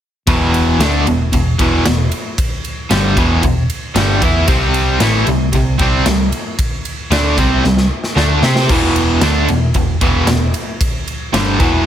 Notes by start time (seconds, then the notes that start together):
0.27 E1 E2 B2 E3, kick, ride
0.54 ride
0.79 D2 D3 A3 D4, snare, ride
1.06 E1 E2 B2, ride
1.33 E1 E2 B2, kick, ride
1.59 E1 E2 B2 E3, kick, ride
1.86 E1 E2 B2, snare, ride
2.12 ride
2.38 kick, ride
2.65 ride
2.91 G1 G2 D3 G3, snare, ride
3.17 E1 E2 B2 E3, kick, ride
3.43 E1 E2 B2, kick, ride
3.70 ride
3.95 G1 G2 D3 G3, snare, ride
4.22 E2 E3 B3 E4, kick, ride
4.47 C2 C3 G3 C4, kick, ride
4.74 ride
5.00 A1 A2 E3 A3, snare, ride
5.27 C2 C3 G3, ride
5.53 C2 C3 G3, kick, ride
5.79 C2 C3 G3 C4, kick, ride
6.06 C2 C3 G3, snare, ride
6.32 ride
6.59 kick, ride
6.85 ride
7.10 D2 D3 A3 D4, snare, ride
7.37 C2 C3 G3 C4, kick, snare, ride
7.64 C2 C3 G3, snare
7.77 snare
8.04 snare
8.16 D2 D3 A3 D4, snare
8.42 C3 C4 G4 C5, snare
8.56 snare
8.69 E1 E2 B2 E3, kick, crash
8.96 ride
9.21 D2 D3 A3 D4, snare, ride
9.48 E1 E2 B2, ride
9.74 E1 E2 B2, kick, ride
10.01 E1 E2 B2 E3, kick, ride
10.26 E1 E2 B2, snare, ride
10.54 ride
10.81 kick, ride
11.08 ride
11.33 G1 G2 D3 G3, snare, ride
11.59 E1 E2 B2 E3, kick, ride